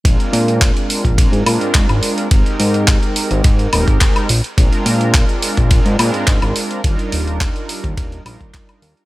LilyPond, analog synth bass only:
\new Staff \with { instrumentName = "Analog synth bass" } { \clef bass \time 4/4 \key bes \mixolydian \tempo 4 = 106 bes,,16 r16 bes,8. r8 bes,,8 aes,16 bes,16 aes,16 aes,16 aes,,16 r8 | aes,,16 r16 aes,8. r8 aes,,16 aes,8 ees,,16 aes,,16 r8 bes,,16 r16 | bes,,16 r16 bes,8. r8 bes,,8 aes,16 bes,16 aes,16 aes,16 aes,,16 r8 | ees,16 r16 ees,,8. r8 ees,16 ees,,8 bes,,16 ees,16 r8 ees,16 r16 | }